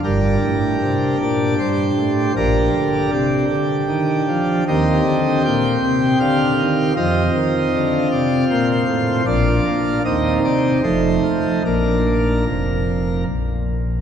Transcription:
<<
  \new Staff \with { instrumentName = "Pipe organ" } { \time 3/4 \key bes \major \tempo 4 = 78 << { bes'4. d''8 c''4 | bes'4 g'2 | ees''4 g''4 f''4 | ees''4. d''8 c''4 |
d''4 ees''8 d''8 c''4 | bes'2 r4 | } \\ { <d' g'>2. | <d' g'>2. | <c' g'>2. | <c' f'>2. |
<d' f'>4 <c' ees'>4 <a ees'>4 | r2. | } >> }
  \new Staff \with { instrumentName = "Pipe organ" } { \clef bass \time 3/4 \key bes \major <g,, g,>8 a,8 c8 bes,8 g,8 a,8 | <bes,, bes,>8 d8 c8 d8 ees8 f8 | <ees, ees>8 d8 bes,8 c8 d8 ees8 | <f, f>8 ees8 d8 c8 bes,8 a,8 |
<bes,, bes,>8 bes8 <ees, ees>8 c8 <f,, f,>8 f8 | <bes,, bes, bes d'>4 <f,, f,>4 bes,,4 | }
>>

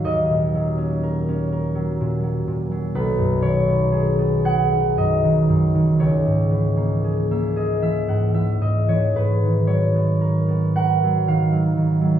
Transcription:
<<
  \new Staff \with { instrumentName = "Harp" } { \time 3/4 \key gis \minor \tempo 4 = 58 <cis'' dis'' eis'' fis''>2. | b'8 cis''4 fis''8 dis''4 | cis''4~ cis''16 e''16 dis''16 e''16 fis''16 e''16 dis''16 cis''16 | b'8 cis''4 fis''8 eis''4 | }
  \new Staff \with { instrumentName = "Harp" } { \clef bass \time 3/4 \key gis \minor <dis, fis ais'>16 ais,16 fis16 cis'16 ais'16 cis'16 ais'16 fis16 ais,16 fis16 ais,16 fis16 | b,,16 fis,16 dis16 b16 gis'16 b16 gis'16 dis16 fis,16 dis16 fis,16 dis16 | cis,16 gis,16 e16 ais16 gis'16 ais16 gis'16 e16 gis,16 e16 gis,16 e16 | gis,16 dis16 fis16 b16 ais'16 b16 ais'16 fis16 dis16 fis16 dis16 fis16 | }
>>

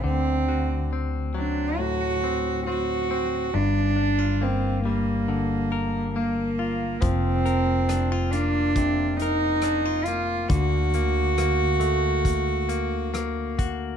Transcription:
<<
  \new Staff \with { instrumentName = "Cello" } { \time 4/4 \key d \phrygian \tempo 4 = 69 c'4 r8 d'8 fis'4 fis'4 | d'4 c'8 bes4. bes4 | c'4. d'4 ees'4 f'8 | fis'2.~ fis'8 r8 | }
  \new Staff \with { instrumentName = "Clean electric guitar" } { \time 4/4 \key d \phrygian << { r8 fis'8 c'4. c'8 c'8 c'8 | r8 d'16 f'16 bes4. bes'8 bes8 f'8 | r8 bes'8 d'16 f'4~ f'16 bes'8 d'16 f'16 bes8~ | bes8 bes8 bes4. bes8 bes8 fis'8 | } \\ { d4. fis8 a,2 | g,4. g8 d2 | f4. bes8 c2 | d4. a2~ a8 | } >> }
  \new Staff \with { instrumentName = "Fretless electric bass" } { \clef bass \time 4/4 \key d \phrygian d,1 | g,,1 | f,,1 | d,1 | }
  \new DrumStaff \with { instrumentName = "Drums" } \drummode { \time 4/4 r4 r4 r4 r4 | r4 r4 r4 r4 | <hh bd>8 hh8 <hh ss>8 hh8 <hh bd>8 hh8 <hh ss>8 hh8 | <hh bd>8 hh8 <hh ss>8 hh8 <hh bd>8 hh8 <hh ss>8 <hh bd>8 | }
>>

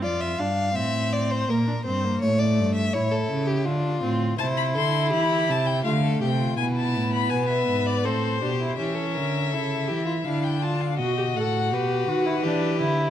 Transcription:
<<
  \new Staff \with { instrumentName = "Violin" } { \time 3/4 \key a \phrygian \tempo 4 = 82 r2. | r2. | a''16 b''16 c'''8 b''8 a''16 g''16 f''8 g''8 | gis''16 a''8 b''16 gis''16 e''8 d''16 c''4 |
e''2 f''16 g''16 a''16 f''16 | dis''8 fis''8 b'2 | }
  \new Staff \with { instrumentName = "Violin" } { \time 3/4 \key a \phrygian d''16 e''16 f''8 e''8 d''16 c''16 bes'8 c''8 | cis''16 d''8 e''16 cis''16 a'8 g'16 f'4 | c''8 a'8 g'4 f'16 a'16 g'16 f'16 | e'4 b'4 a'8 g'8 |
g'16 a'16 bes'8 a'8 g'16 f'16 e'8 f'8 | fis'2 g'4 | }
  \new Staff \with { instrumentName = "Viola" } { \time 3/4 \key a \phrygian f'8 d'8 c'4 bes16 d'16 c'16 bes16 | a4 e'4 d'8 c'8 | e'2 a4 | b2 c'8 d'16 e'16 |
cis'4 e'4 d'4 | fis'16 g'16 a'8 g'8 fis'16 e'16 d'8 e'8 | }
  \new Staff \with { instrumentName = "Cello" } { \clef bass \time 3/4 \key a \phrygian f,8 g,8 a,4 bes,8 g,8 | a,8 g,8 a,8 cis8 d8 a,8 | c8 d8 e8 c8 d8 c8 | b,8 a,8 b,8 gis,8 a,8 b,8 |
e8 d8 cis8 e8 d4 | b,8 a,8 b,8 dis8 e8 d8 | }
>>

